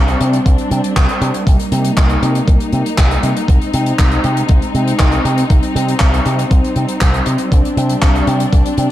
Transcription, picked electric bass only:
Already playing: C2
0.21 C3
0.46 C2
0.71 C3
0.96 C2
1.21 C3
1.47 C2
1.72 C3
1.97 C2
2.22 C3
2.48 C2
2.73 C3
2.98 C2
3.23 C3
3.48 C2
3.74 C3
3.99 C2
4.24 C3
4.49 C2
4.74 C3
5.00 C2
5.25 C3
5.50 C2
5.75 C3
6.00 C2
6.26 C3
6.51 C2
6.76 C3
7.01 C2
7.26 C3
7.52 C2
7.77 C3
8.02 C2
8.27 C3
8.53 C2
8.78 C3

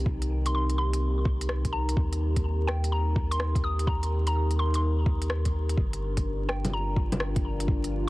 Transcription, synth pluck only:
0.46 C6
0.55 C6
0.78 C6
1.73 A#5
2.67 G5
2.92 A#5
3.31 C6
3.64 D#6
3.87 A#5
4.27 A#5
4.59 C6
4.75 C6
6.49 G5
6.73 A#5

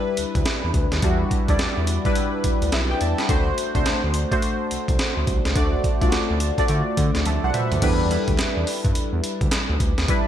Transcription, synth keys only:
Already playing: G3 D4 E4 B4
1.03 G3 D4 E4 F#4
1.49 G3 D4 E4 D5
2.05 G3 D4 E4 B4
2.73 B4 E5
2.91 D5 G5
3.01 E5 A5
3.19 F#5 B5
3.29 A3 D4 F#4 C5
3.74 A3 D4 F#4 C5
4.31 A3 D4 F#4 C5
5.56 A3 D4 F#4 D5
6.01 A3 D4 F4 D5
6.09 F#4
6.58 A3 D4 F#4 D5
7.26 E5 A5
7.44 C5 F#5
7.55 B4 E5
7.72 A4 D5
7.82 G3 D4 E4 B4
8.11 G3 D4 E4 B4
10.09 G3 D4 E4 B4

